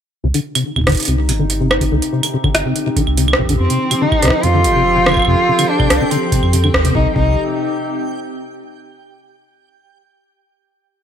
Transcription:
0.24 C2 C3
0.34 D3, closed hi-hat
0.46 C4 D#4
0.55 C3 G4, closed hi-hat, claves
0.76 C3, kick, claves
0.79 kick
0.81 kick
0.84 G1, kick
0.87 D3, kick, cross-stick, closed hi-hat
0.89 kick, closed hi-hat
0.92 kick, closed hi-hat
0.94 kick, closed hi-hat
0.97 closed hi-hat
1.00 closed hi-hat
1.03 closed hi-hat
1.05 C2 C3, closed hi-hat
1.08 closed hi-hat
1.29 G1 C3, closed hi-hat
1.39 D3
1.50 closed hi-hat
1.60 C3
1.71 cross-stick, claves
1.81 C3, kick, closed hi-hat
1.92 C2 D3
2.02 closed hi-hat
2.13 C3
2.23 closed hi-hat, claves
2.33 C3
2.44 D3, kick, claves
2.55 G1, cross-stick, closed hi-hat
2.65 C3
2.76 closed hi-hat
2.86 C3
2.96 D3, kick, closed hi-hat
3.07 C2, claves
3.17 C3, closed hi-hat
3.28 claves
3.33 cross-stick
3.38 A#1 C3, kick
3.42 kick
3.45 D3, kick
3.49 kick, closed hi-hat
3.52 kick
3.56 F2 F3 C4 G4 G5, kick
3.70 C3, closed hi-hat
3.91 C3, closed hi-hat, claves
3.98 D3 D#4 A4
4.12 kick, claves
4.22 C2 C3, kick, cross-stick, closed hi-hat
4.25 kick, cross-stick
4.28 kick, cross-stick
4.30 kick, cross-stick
4.43 F2 C3 F4, closed hi-hat
4.54 D3
4.64 F1, closed hi-hat
4.75 C3
4.96 C3
5.06 D3, cross-stick, claves
5.09 claves
5.12 claves
5.14 kick, claves
5.17 claves
5.20 claves
5.22 claves
5.25 F2 C3 F4, claves
5.48 C3
5.59 D3, closed hi-hat, claves
5.69 D4
5.80 C3, kick, claves
5.90 C2, cross-stick, closed hi-hat
6.01 C3
6.11 D3 C4, closed hi-hat
6.32 C3, kick, closed hi-hat
6.43 F2, claves
6.53 C3, closed hi-hat
6.64 D3, claves
6.74 D#2, kick, cross-stick
6.85 C3, closed hi-hat
6.95 C2 C3 D#4, kick
7.01 C4
7.08 D#4
7.14 C2 C3 D#4 G4, kick

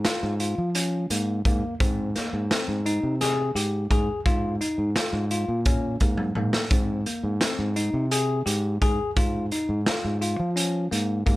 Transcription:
0.05 F4, snare, closed hi-hat
0.23 G#2
0.40 F4, closed hi-hat
0.58 F3
0.75 C#4, closed hi-hat
1.10 G#2 A#3, closed hi-hat
1.45 G#2 A#3, kick, closed hi-hat
1.80 G#2 C4, kick, closed hi-hat
2.16 A#3, snare, closed hi-hat
2.33 G#2
2.51 C4, snare, closed hi-hat
2.68 G#2
2.86 D#4, closed hi-hat
3.03 C3
3.21 G#4, snare, closed hi-hat
3.55 G#2 G4, closed hi-hat
3.90 G#2 G#4, kick, closed hi-hat
4.26 G#2 F4, kick, closed hi-hat
4.61 D#4, closed hi-hat
4.78 G#2
4.96 F4, snare, closed hi-hat
5.13 G#2
5.31 F4, closed hi-hat
5.48 A#2
5.65 C#4, kick, closed hi-hat
6.00 G#2 A#3, kick, closed hi-hat
6.17 high tom
6.35 G#2 A#3, mid tom
6.53 snare
6.70 G#2 C4, kick, closed hi-hat
7.06 A#3, closed hi-hat
7.23 G#2
7.41 C4, snare, closed hi-hat
7.59 G#2
7.76 D#4, closed hi-hat
7.93 C3
8.11 G#4, closed hi-hat
8.46 G#2 G4, closed hi-hat
8.81 G#2 G#4, kick, closed hi-hat
9.16 G#2 F4, kick, closed hi-hat
9.51 D#4, closed hi-hat
9.69 G#2
9.86 F4, snare, closed hi-hat
10.04 G#2
10.21 F4, closed hi-hat
10.40 F3
10.56 C#4, closed hi-hat
10.91 G#2 A#3, closed hi-hat
11.26 G#2 A#3, kick, closed hi-hat

